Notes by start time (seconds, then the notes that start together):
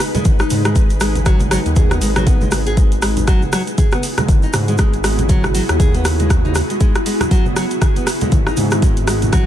Already playing: G#3 D#4 G#4 B4
0.00 cross-stick, open hi-hat, shaker
0.14 G#3, closed hi-hat, high conga, low conga, shaker
0.25 G#1, kick, closed hi-hat, mid tom, shaker
0.39 D#4, cross-stick, shaker
0.50 G#2, open hi-hat, high conga, shaker
0.65 G#3, cross-stick, closed hi-hat, mid tom, shaker
0.75 G#1 G#3, kick, closed hi-hat, shaker
0.90 closed hi-hat, shaker
1.00 G#3, cross-stick, open hi-hat, shaker
1.15 closed hi-hat, high conga, low conga, shaker
1.26 F#3, kick, cross-stick, closed hi-hat, mid tom, shaker
1.40 closed hi-hat, high conga, shaker
1.51 F#3, cross-stick, open hi-hat, high conga, shaker
1.66 D#2, closed hi-hat, shaker
1.76 G#4, kick, closed hi-hat, mid tom, low conga, shaker
1.91 B3, cross-stick, closed hi-hat, high conga, shaker
2.01 G#1 G#3, open hi-hat, shaker
2.16 F#3, cross-stick, closed hi-hat, high conga, shaker
2.26 B3, kick, closed hi-hat, low conga, shaker
2.41 G#3, high conga, shaker
2.51 G#1, cross-stick, open hi-hat, shaker
2.67 G#4, closed hi-hat, shaker
2.77 G#3 B3 E4 F#4 G#4, kick, closed hi-hat, shaker
2.92 closed hi-hat, shaker
3.02 G#3, cross-stick, open hi-hat, shaker
3.17 closed hi-hat, high conga, low conga, shaker
3.27 F#3, kick, cross-stick, closed hi-hat, shaker
3.42 high conga, shaker
3.52 F#3, cross-stick, open hi-hat, shaker
3.67 closed hi-hat, shaker
3.78 G#4, kick, closed hi-hat, mid tom, shaker
3.92 B3, cross-stick, closed hi-hat, high conga, shaker
4.03 open hi-hat, shaker
4.18 G#3, cross-stick, closed hi-hat, high conga, low conga, shaker
4.28 G#1, kick, closed hi-hat, mid tom, shaker
4.42 D#4, shaker
4.53 G#2, cross-stick, open hi-hat, high conga, shaker
4.68 G#3, closed hi-hat, mid tom, shaker
4.78 G#1 G#3, kick, cross-stick, closed hi-hat, shaker
4.93 closed hi-hat, shaker
5.04 G#3, cross-stick, open hi-hat, shaker
5.18 closed hi-hat, high conga, low conga, shaker
5.29 F#3, kick, closed hi-hat, mid tom, shaker
5.44 cross-stick, high conga, shaker
5.54 F#3, open hi-hat, shaker
5.69 D#2, cross-stick, closed hi-hat, shaker
5.80 G#4, kick, closed hi-hat, mid tom, low conga, shaker
5.94 B3, closed hi-hat, high conga, shaker
6.05 cross-stick, open hi-hat, shaker
6.19 G#3, closed hi-hat, high conga, shaker
6.30 kick, cross-stick, closed hi-hat, low conga, shaker
6.45 D#4, high conga, shaker
6.55 cross-stick, open hi-hat, shaker
6.70 G#3, closed hi-hat, shaker
6.80 G#3, kick, closed hi-hat, shaker
6.95 cross-stick, closed hi-hat, shaker
7.06 G#3, open hi-hat, shaker
7.20 cross-stick, closed hi-hat, high conga, low conga, shaker
7.31 F#3, kick, closed hi-hat, shaker
7.46 high conga, shaker
7.56 F#3, cross-stick, open hi-hat, shaker
7.71 closed hi-hat, shaker
7.81 G#4, kick, cross-stick, closed hi-hat, mid tom, shaker
7.96 B3, closed hi-hat, high conga, shaker
8.07 cross-stick, open hi-hat, shaker
8.21 G#3, closed hi-hat, high conga, low conga, shaker
8.32 G#1, kick, closed hi-hat, mid tom, shaker
8.46 D#4, cross-stick, shaker
8.57 G#2, open hi-hat, high conga, shaker
8.71 G#3, cross-stick, closed hi-hat, mid tom, shaker
8.82 G#1 G#3, kick, closed hi-hat, shaker
8.97 closed hi-hat, shaker
9.07 G#3, cross-stick, open hi-hat, shaker
9.22 closed hi-hat, high conga, low conga, shaker
9.32 F#3, kick, cross-stick, closed hi-hat, mid tom, shaker